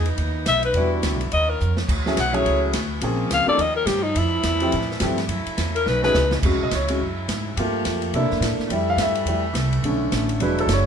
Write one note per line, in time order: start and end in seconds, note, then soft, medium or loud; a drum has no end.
0.00 0.17 E2 medium
0.00 0.73 C#3 medium
0.00 0.74 E3 medium
0.00 1.30 B3 medium
0.00 0.74 D#4 medium
0.06 ride medium
0.18 0.45 D#2 medium
0.18 ride medium
0.46 0.73 B1 loud
0.46 0.63 E5 loud
0.46 snare medium
0.46 hi-hat pedal medium
0.46 ride medium
0.63 0.91 B4 medium
0.63 ride soft
0.73 1.02 E2 medium
0.73 1.31 D3 medium
0.73 1.70 G3 medium
0.73 1.17 G3 medium
0.73 1.17 B3 soft
0.73 1.18 D4 medium
0.73 1.32 E4 medium
0.73 1.18 E4 medium
0.73 1.18 F#4 medium
0.73 ride medium
1.02 1.13 D2 medium
1.02 snare medium
1.02 hi-hat pedal medium
1.02 ride medium
1.13 1.22 B1 medium
1.21 1.31 G1 medium
1.21 ride medium
1.30 1.60 D#2 medium
1.30 1.70 D#3 medium
1.30 2.99 C#4 medium
1.30 1.70 F4 medium
1.30 1.51 D#5 loud
1.30 ride medium
1.50 1.78 A#4 medium
1.60 1.88 F2 medium
1.60 hi-hat pedal medium
1.77 snare medium
1.87 2.16 D2 medium
1.87 3.00 E3 medium
1.87 3.00 F#4 medium
1.87 3.00 G#4 medium
1.87 kick medium
1.87 crash medium
2.06 2.16 F#3 medium
2.06 2.16 A3 medium
2.06 2.16 C#4 medium
2.06 2.16 E4 medium
2.06 2.17 G#4 medium
2.06 snare medium
2.17 2.44 B1 medium
2.17 2.36 F#5 loud
2.17 snare medium
2.17 hi-hat pedal medium
2.17 ride medium
2.33 2.71 F#3 medium
2.33 2.71 A3 medium
2.33 2.71 C#4 medium
2.33 2.72 E4 medium
2.33 2.71 G#4 medium
2.33 2.63 C#5 medium
2.33 ride soft
2.46 2.73 C#2 medium
2.46 ride medium
2.73 3.01 D2 medium
2.73 snare medium
2.73 hi-hat pedal medium
2.73 ride medium
3.01 3.29 A#1 medium
3.01 3.58 C#3 medium
3.01 5.27 F3 medium
3.01 3.44 F3 medium
3.01 3.58 G#3 medium
3.01 3.58 A#3 medium
3.01 3.44 A#3 medium
3.01 3.45 C4 medium
3.01 3.45 C#4 medium
3.01 3.45 G#4 medium
3.01 ride medium
3.30 3.46 C#2 medium
3.30 3.48 F5 medium
3.30 snare medium
3.30 hi-hat pedal medium
3.30 ride medium
3.47 3.57 F3 medium
3.47 3.57 A#3 medium
3.47 3.58 C#4 medium
3.47 3.58 D#4 medium
3.47 3.58 A4 medium
3.47 3.63 D5 loud
3.47 muted upright bass stroke soft
3.55 3.85 D#2 medium
3.55 4.13 D#3 medium
3.55 4.12 G3 medium
3.55 4.13 C#4 medium
3.59 3.75 D#5 loud
3.59 ride medium
3.76 3.88 A#4 loud
3.85 4.14 G2 loud
3.85 4.04 G4 medium
3.85 snare medium
3.85 hi-hat pedal medium
3.85 ride medium
4.03 4.19 D#4 medium
4.13 4.43 F2 medium
4.13 5.28 E3 medium
4.13 5.27 G3 medium
4.13 5.27 A3 medium
4.13 ride medium
4.18 5.02 E4 medium
4.43 4.71 E2 medium
4.43 snare medium
4.43 hi-hat pedal medium
4.43 ride medium
4.60 4.72 F3 medium
4.60 4.71 A3 medium
4.60 4.71 C4 medium
4.60 4.72 E4 medium
4.60 4.72 G4 medium
4.60 ride medium
4.72 5.00 A2 medium
4.72 ride medium
4.81 snare soft
4.91 snare soft
5.00 5.28 G2 loud
5.00 5.16 F3 medium
5.00 5.16 A3 medium
5.00 5.16 C4 medium
5.00 5.17 E4 medium
5.00 5.17 G4 medium
5.00 snare medium
5.00 hi-hat pedal medium
5.00 ride medium
5.18 snare soft
5.18 ride soft
5.28 5.45 F#2 medium
5.28 6.40 C#3 medium
5.28 5.85 F#3 medium
5.28 6.42 A3 medium
5.28 5.85 E4 medium
5.28 ride medium
5.46 muted upright bass stroke soft
5.46 ride medium
5.58 5.85 E2 medium
5.58 snare medium
5.58 hi-hat pedal medium
5.58 ride medium
5.75 5.90 A#4 loud
5.75 ride medium
5.85 6.13 B1 medium
5.85 6.40 G#3 medium
5.85 6.42 D#4 medium
5.85 6.03 B4 medium
5.85 snare medium
6.02 6.13 F#3 medium
6.02 6.13 A3 medium
6.02 6.13 C#4 medium
6.02 6.14 D#4 medium
6.02 6.14 G#4 medium
6.02 6.35 B4 loud
6.02 snare medium
6.13 6.41 C#2 loud
6.13 snare medium
6.13 hi-hat pedal medium
6.31 snare medium
6.40 6.52 E2 medium
6.40 7.55 C#3 medium
6.40 7.55 F#3 medium
6.40 7.54 G#3 medium
6.40 7.54 E4 medium
6.40 kick medium
6.40 crash medium
6.45 6.64 G#3 soft
6.45 6.65 C#4 soft
6.45 6.65 F#4 medium
6.52 6.61 C#2 medium
6.62 6.71 B1 medium
6.62 6.72 D#5 medium
6.71 6.99 C#2 medium
6.71 6.90 C#5 medium
6.71 snare medium
6.71 hi-hat pedal medium
6.71 ride medium
6.88 6.99 G#3 soft
6.88 7.00 C#4 soft
6.88 7.00 F#4 soft
6.88 ride medium
7.00 7.27 F#2 medium
7.28 7.55 G#2 medium
7.28 snare medium
7.28 hi-hat pedal medium
7.28 ride medium
7.56 7.84 G2 medium
7.56 8.12 F3 medium
7.56 8.12 A3 medium
7.56 8.12 F4 medium
7.56 8.12 G4 medium
7.56 ride medium
7.60 8.12 A#3 soft
7.85 8.12 F2 medium
7.85 snare medium
7.85 hi-hat pedal medium
7.85 ride medium
8.02 ride soft
8.13 8.23 C3 medium
8.13 8.51 D3 medium
8.13 8.68 A3 soft
8.13 8.69 A#3 soft
8.13 8.69 D4 soft
8.13 8.51 E4 medium
8.13 8.69 E4 medium
8.13 ride medium
8.23 8.31 A#2 medium
8.31 8.40 G2 medium
8.31 snare soft
8.40 8.57 A2 loud
8.40 snare medium
8.40 hi-hat pedal medium
8.40 ride medium
8.59 muted upright bass stroke soft
8.59 snare soft
8.68 8.96 F2 medium
8.68 9.82 E3 medium
8.68 9.82 G3 medium
8.68 9.27 G3 medium
8.68 10.38 A3 medium
8.68 9.28 A3 soft
8.68 ride medium
8.72 9.28 E4 medium
8.90 9.00 F5 medium
8.97 9.24 G2 medium
8.97 snare medium
8.97 hi-hat pedal medium
8.97 ride medium
9.02 9.11 E5 medium
9.15 ride medium
9.25 9.53 E2 medium
9.25 9.43 G3 soft
9.25 ride medium
9.29 9.44 A3 soft
9.29 9.44 E4 medium
9.53 9.82 C2 loud
9.53 snare medium
9.53 hi-hat pedal medium
9.53 ride medium
9.73 ride medium
9.82 10.11 B1 medium
9.82 10.40 D3 medium
9.82 10.38 D3 soft
9.82 10.39 A3 soft
9.82 10.40 B3 medium
9.82 10.39 C#4 medium
9.82 ride medium
10.12 10.38 A1 medium
10.12 snare medium
10.12 hi-hat pedal medium
10.12 ride medium
10.29 ride medium
10.39 10.66 E1 medium
10.39 10.86 D3 medium
10.39 10.86 F#3 medium
10.39 10.86 G#3 medium
10.39 10.86 G#3 soft
10.39 10.86 D4 medium
10.39 10.86 E4 medium
10.39 ride medium
10.43 10.58 B4 medium
10.58 10.70 A4 medium
10.58 ride medium
10.67 10.86 F#1 medium
10.67 snare medium
10.67 hi-hat pedal medium
10.67 ride medium
10.73 10.86 C#5 medium